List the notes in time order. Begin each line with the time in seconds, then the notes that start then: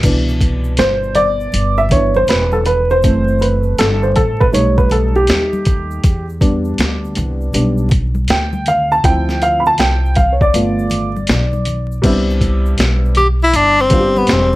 0.03 C2 B2 E3 D4, kick, closed hi-hat, crash, shaker
0.28 shaker
0.40 kick, closed hi-hat, shaker
0.64 shaker
0.77 G1 C5, snare, closed hi-hat, shaker
1.03 shaker
1.15 D5, closed hi-hat, high conga, low conga, shaker
1.40 shaker
1.52 G1, closed hi-hat, high conga, shaker
1.77 E5, shaker
1.89 E3 B3 D4 C#5, kick, closed hi-hat, low conga, shaker
2.14 C5, high conga, shaker
2.27 E1 B4, snare, closed hi-hat, shaker
2.52 A4, high conga, shaker
2.65 B4, closed hi-hat, low conga, shaker
2.90 C5, shaker
3.02 F#1 E3 A3 C4, kick, closed hi-hat, shaker
3.28 shaker
3.39 B4, closed hi-hat, shaker
3.63 shaker
3.78 G1 A4, snare, closed hi-hat, shaker
4.03 C5, shaker
4.16 A1 A4, kick, closed hi-hat, high conga, low conga, shaker
4.40 B4, kick, shaker
4.52 B1 G3 A3 D#4 C#5, closed hi-hat, high conga, shaker
4.78 B4, kick, shaker
4.90 A4, closed hi-hat, low conga, shaker
5.15 G4, high conga, shaker
5.27 D#2, snare, closed hi-hat, shaker
5.53 high conga, shaker
5.65 kick, closed hi-hat, low conga, shaker
5.91 shaker
6.04 E2, kick, closed hi-hat, shaker
6.29 shaker
6.41 G3 B3 D4, kick, closed hi-hat, shaker
6.65 shaker
6.78 D2, snare, closed hi-hat, shaker
7.05 shaker
7.15 C2, closed hi-hat, high conga, low conga, shaker
7.41 shaker
7.53 B1 G3 B3 D4, closed hi-hat, high conga, shaker
7.78 shaker
7.89 kick, closed hi-hat, low conga, shaker
8.15 high conga, shaker
8.28 D2 G5, snare, closed hi-hat, shaker
8.53 high conga, shaker
8.66 F5, closed hi-hat, low conga, shaker
8.92 A5, shaker
9.04 D2 F3 C4 E4 G5, kick, closed hi-hat, shaker
9.29 snare, shaker
9.42 F5, closed hi-hat, shaker
9.60 B5
9.66 A5, shaker
9.78 C2 G5, snare, closed hi-hat, shaker
10.05 shaker
10.15 F5, kick, closed hi-hat, high conga, low conga, shaker
10.32 C#5
10.41 D5, kick, shaker
10.54 G1 A3 B3 F4, closed hi-hat, high conga, shaker
10.79 shaker
10.90 closed hi-hat, low conga, shaker
11.16 high conga, shaker
11.27 B1, snare, closed hi-hat, shaker
11.53 high conga, shaker
11.65 closed hi-hat, low conga, shaker
11.92 shaker
12.02 C2 G3 B3 C4 D4 E4, kick, closed hi-hat, crash, shaker
12.30 shaker
12.41 kick, closed hi-hat, shaker
12.66 shaker
12.78 B1, snare, closed hi-hat, shaker
13.05 shaker
13.15 G4, closed hi-hat, high conga, low conga, shaker
13.42 E4, shaker
13.53 G1 D4, closed hi-hat, high conga, shaker
13.79 C4, shaker
13.90 G3 B3 C4 D4 F4, kick, closed hi-hat, low conga, shaker
14.00 G4
14.16 B3, high conga, shaker
14.27 E1, snare, closed hi-hat, shaker
14.32 C4